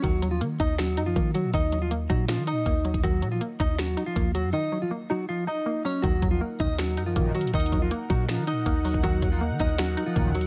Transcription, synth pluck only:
\new Staff \with { instrumentName = "Synth pluck" } { \time 4/4 \key ees \minor \tempo 4 = 160 ees8 ges8 bes8 ees'4 ees'8 bes8 ges8 | ees8 ges8 bes8 ees'4 ees'8 bes8 ges8 | ees8 ges8 bes8 ees'4 ees'8 bes8 ges8 | ees8 ges8 bes8 ees'4 ees'8 bes8 ges8 |
ees8 ges8 bes8 ees'4 ees'8 bes8 ges8 | ees8 ges8 bes8 ees'4 ees'8 bes8 ges8 | ees8 ges8 bes8 ees'4 ees'8 bes8 ges8 | }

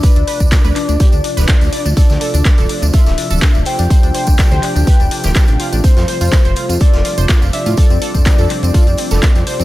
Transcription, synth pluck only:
\new Staff \with { instrumentName = "Synth pluck" } { \time 4/4 \key d \minor \tempo 4 = 124 b'16 d'16 b'16 d'16 d'16 b'16 d'16 d'16 g'16 d'16 d'16 b'16 d'16 d'16 d''16 d'16 | a'16 d'16 a'16 d'16 d'16 a'16 d'16 d'16 f'16 d'16 d'16 a'16 d'16 d'16 c''16 d'16 | c''16 d'16 c''16 d'16 d'16 c''16 d'16 d'16 b'16 d'16 d'16 g'16 d'16 d'16 f'16 d'16 | c''16 f'16 c''16 f'16 r16 c''16 f'16 f'16 a'16 f'16 f'16 c''16 f'16 f'16 e''16 f'16 |
a'16 c'16 a'16 c'16 c'16 a'16 c'16 c'16 f'16 c'16 c'16 a'16 c'16 c'16 c''16 c'16 | }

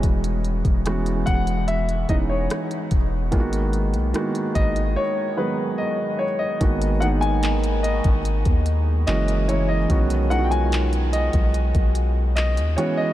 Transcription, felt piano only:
\new Staff \with { instrumentName = "Felt piano" } { \time 4/4 \key gis \minor \tempo 4 = 73 <e gis b cis' fis'>8 r8 <e gis b cis' fis'>4 r8 <e gis b cis' dis'>4 r8 | <dis gis ais b eis' fis'>8 r8 <dis gis ais b fis'>4 r8 <dis fis gis b gis'>4 r8 | <dis gis ais b fis'>8 <dis gis ais b dis'>4. r4 <e gis ais cis' fis'>8 <e gis ais cis' e'>8 | <dis gis b cis' fis'>8 <dis gis b cis' eis' fis'>4. r4. <e gis b cis' fis'>8 | }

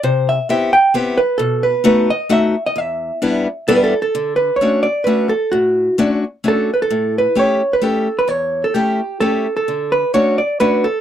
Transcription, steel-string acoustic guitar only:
\new Staff \with { instrumentName = "Steel-string acoustic guitar" } { \time 3/4 \key e \minor \tempo 4 = 130 c4 <b c' e' g'>8 r8 <b c' e' g'>8 r8 | b,4 <a b dis' fis'>8 r8 <a b dis' fis'>8 r8 | e,4 <g b d' e'>8 r8 <g b d' e'>8 r8 | \key d \major d4 <a cis' d' fis'>8 r8 <a cis' d' fis'>8 r8 |
a,4 <a cis' d' fis'>8 r8 <a cis' d' fis'>8 r8 | a,4 <a cis' e' g'>8 r8 <a cis' e' g'>8 r8 | e,4 <a cis' e' g'>8 r8 <a cis' e' g'>8 r8 | d4 <a cis' d' fis'>8 r8 <a cis' d' fis'>8 r8 | }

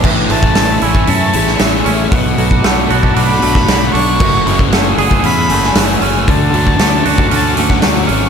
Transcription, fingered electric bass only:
\new Staff \with { instrumentName = "Fingered electric bass" } { \clef bass \time 4/4 \key a \major \tempo 4 = 116 a,,8 a,,8 a,,8 a,,8 fis,8 a,,8 a,,8 a,,8 | b,,8 b,,8 b,,8 b,,8 b,,8 b,,8 b,,8 b,,8 | fis,,8 fis,,8 fis,,8 fis,,8 e,8 fis,,8 fis,,8 fis,,8 | d,8 d,8 d,8 d,8 d,8 d,8 d,8 gis,,8 | }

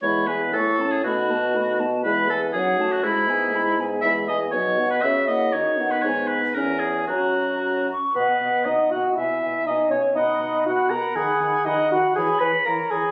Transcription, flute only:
\new Staff \with { instrumentName = "Flute" } { \time 2/4 \key e \major \tempo 4 = 120 b''8 gis''8 cis'''8 a''8 | b''8 a''8 b''8 a''8 | b''8 gis''8 fis''8 a''8 | b''8 gis''8 b''8 gis''8 |
\key b \major b''8 gis''8 dis''8 fis''8 | e''8 fis''8 dis''8 fis''8 | gis''4 gis''4 | ais''4 ais''8 cis'''8 |
fis''8 fis''8 fis''8 fis''8 | gis''8 gis''8 gis''8 gis''8 | b''8 b''8 b''8 b''8 | b''8 b''8 b''8 b''8 |
b''8 b''8 b''8 b''8 | }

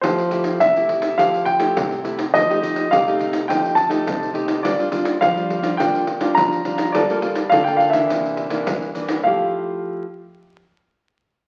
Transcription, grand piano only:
\new Staff \with { instrumentName = "Grand piano" } { \time 4/4 \key f \major \tempo 4 = 104 c''4 e''4 f''8 g''4 r8 | ees''4 f''4 g''8 a''4 r8 | d''4 f''4 g''4 bes''4 | d''4 f''16 g''16 f''16 e''4. r8. |
f''8 r2. r8 | }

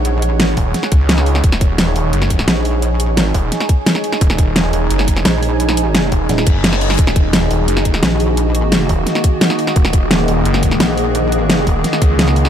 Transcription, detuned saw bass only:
\new Staff \with { instrumentName = "Detuned saw bass" } { \clef bass \time 4/4 \key ees \minor \tempo 4 = 173 r4. ees,,8 r8 des,4. | ees,,4. ees,,8 ges,,4 r4 | r4. ees,,8 r2 | ees,,4. ees,,8 ges,,4 r4 |
r4. ees,,8 r8 ges,,4. | ees,,4. ees,,8 ges,,4 r4 | r4. ees,,8 r2 | ees,,4. ees,,8 ges,,4 r4 |
r4. ees,,8 r8 des,4. | }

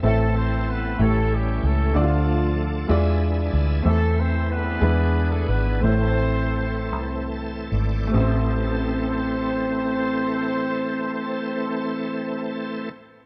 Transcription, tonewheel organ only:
\new Staff \with { instrumentName = "Tonewheel organ" } { \time 6/8 \key a \minor \tempo 4. = 58 << { r2. | r2. | r2. | r2 a''8 d''8 |
r2. | r2. | } \\ { <e a c' a'>4. <e a c' cis' g'>4. | <f a d' a'>4. <e d' gis' e''>4. | <e a c' e'>4. <e b d' gis'>4. | <e a c' a'>2. |
<e a c' a'>2.~ | <e a c' a'>2. | } >> }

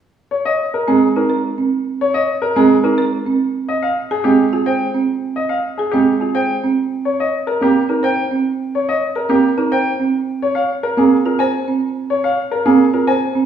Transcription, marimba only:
\new Staff \with { instrumentName = "Marimba" } { \time 3/4 \key des \lydian \tempo 4 = 107 r4. c'16 r16 ees'16 bes'16 r16 c'16 | r4. c'16 r16 ees'16 bes'16 r16 c'16 | r4 r16 aes'16 c'16 r16 f'16 c''16 r16 c'16 | r4 r16 aes'16 c'16 r16 f'16 c''16 r16 c'16 |
r4 r16 bes'16 c'16 r16 ees'16 c''16 r16 c'16 | r4 r16 bes'16 c'16 r16 ees'16 c''16 r16 c'16 | r4 r16 bes'16 c'16 r16 f'16 c''16 r16 c'16 | r4 r16 bes'16 c'16 r16 f'16 c''16 r16 c'16 | }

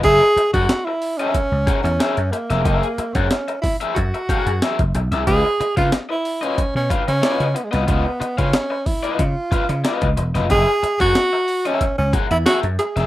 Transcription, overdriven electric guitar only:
\new Staff \with { instrumentName = "Overdriven electric guitar" } { \time 4/4 \key ges \major \tempo 4 = 92 <aes' bes' fes''>16 r8 <aes' bes' ges''>16 r8. <aes' bes' fes''>16 r8 <aes' bes' ges''>16 r16 <aes' bes' fes''>16 r8 <aes' bes' fes''>16 | <aes' bes' fes''>16 r8 <aes' bes' ges''>16 r8. <aes' bes' fes''>16 r8 <aes' bes' ges''>16 r16 <aes' bes' fes''>16 r8 <aes' bes' fes''>16 | <f' ces'' ees''>16 r8 <f' ces'' f''>16 r8. <f' ces'' ees''>16 r8 <f' ces'' f''>16 r16 <f' ces'' ees''>16 r8 <f' ces'' ees''>16 | <f' ces'' ees''>16 r8 <f' ces'' f''>16 r8. <f' ces'' ees''>16 r8 <f' ces'' f''>16 r16 <f' ces'' ees''>16 r8 <f' ces'' ees''>16 |
<aes' bes' fes''>16 r8 <aes' bes' ges''>16 r8. <aes' bes' fes''>16 r8 <aes' bes' ges''>16 r16 <aes' bes' fes''>16 r8 <aes' bes' fes''>16 | }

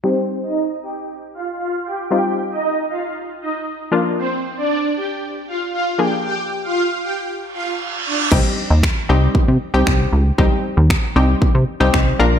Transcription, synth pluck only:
\new Staff \with { instrumentName = "Synth pluck" } { \time 4/4 \key c \minor \tempo 4 = 116 <g c' ees' g'>1 | <g c' ees' f'>2.~ <g c' ees' f'>8 <f bes d' f'>8~ | <f bes d' f'>2.~ <f bes d' f'>8 <f bes d' aes'>8~ | <f bes d' aes'>2.~ <f bes d' aes'>8 r8 |
<g c' ees' g'>4~ <g c' ees' g'>16 r16 <g c' ees' g'>4 r16 <g c' ees' g'>4 r16 | <g c' ees' g'>4~ <g c' ees' g'>16 r16 <g c' ees' g'>4 r16 <g c' ees' g'>8. <bes d' f' bes'>8 | }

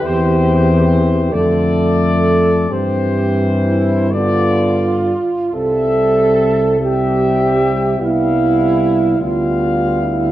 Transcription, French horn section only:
\new Staff \with { instrumentName = "French horn section" } { \time 6/8 \key c \major \tempo 4. = 47 g'4. a'4. | g'4 e'8 f'4. | a'4. g'4. | e'4. f'4 e'8 | }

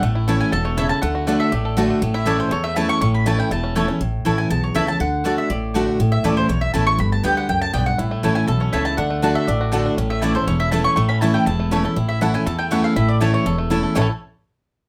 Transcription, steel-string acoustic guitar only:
\new Staff \with { instrumentName = "Steel-string acoustic guitar" } { \time 4/4 \key a \mixolydian \tempo 4 = 241 << { r4 <e a cis' e'>4 r2 | r4 <d a d' fis'>4 r4 <d a d' fis'>4 | r4 <e a cis' e'>4 r4 <e a cis' e'>4 | r4 <e a cis' e'>4 r4 <e a cis' e'>8 <cis' e'>8 |
r4 <e a cis' e'>4 r4 <e a cis' e'>8 <cis' e'>8 | r4 <d a d' fis'>4 r4 <d a d' fis'>4 | r4 <e a cis' e'>4 r4 <e a cis' e'>4 | r4 <d g b g'>4 r2 |
r4 <e a cis' e'>4 r2 | r4 <d a d' fis'>4 r4 <d a d' fis'>4 | r4 <e a cis' e'>8 <cis' e'>8 r4 <e a cis' e'>4 | r4 <e a cis' e'>4 r4 <e a cis' e'>8 <cis' e'>8 |
r4 <e a cis' e'>8 <cis' e'>8 r4 <e a cis' e'>4 | r4 <e a cis' e'>4 r4 <e a cis' e'>4 | <a, e a cis' e'>8 r2. r8 | } \\ { a,2 b,4 cis4 | d2 a,2 | a,2 e,2 | a,2 e,2 |
a,2 e,2 | d2 a,2 | a,2 e,2 | g,2 fis,4 g,4 |
a,2 b,4 cis4 | d2 a,2 | a,2 e,2 | a,2 e,2 |
a,2 e,2 | a,2 e,2 | r1 | } >> }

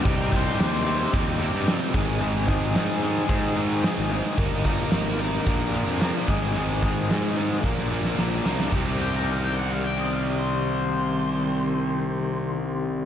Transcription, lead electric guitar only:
\new Staff \with { instrumentName = "Lead electric guitar" } { \time 4/4 \key c \minor \tempo 4 = 110 g'16 bes'16 c''8 c''4 r2 | r1 | r1 | r1 |
r8 g''16 bes''16 f''16 g''16 fis''16 f''16 g''16 ees''16 f''16 ees''16 c''4~ | c''1 | }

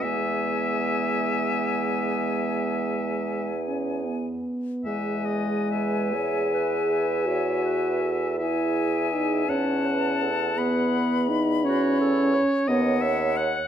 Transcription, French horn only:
\new Staff \with { instrumentName = "French horn" } { \time 12/8 \key e \major \tempo 4. = 53 gis1~ gis8 cis'8 b4 | gis4. gis'4. fis'4. e'4 dis'8 | cis'4 r8 b4 dis'8 cis'4. b8 r4 | }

